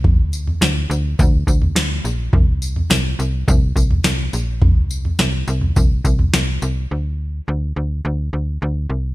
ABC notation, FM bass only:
X:1
M:4/4
L:1/8
Q:1/4=105
K:Cmix
V:1 name="FM bass" clef=bass
D,,2 D,, D,, D,, D,, D,, B,,, | C,,2 C,, C,, C,, C,, C,, B,,, | C,,2 C,, C,, C,, C,, C,, C,, | D,,2 D,, D,, D,, D,, D,, C,, |]